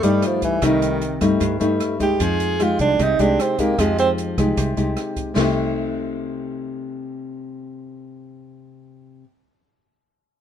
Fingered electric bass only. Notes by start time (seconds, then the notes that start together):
0.04 G2
0.62 C2
1.22 G2
1.41 G2
1.61 G2
2.20 F2
2.80 C2
2.99 C2
3.19 C2
3.78 F2
4.38 C2
4.57 C2
4.77 C2
5.37 C2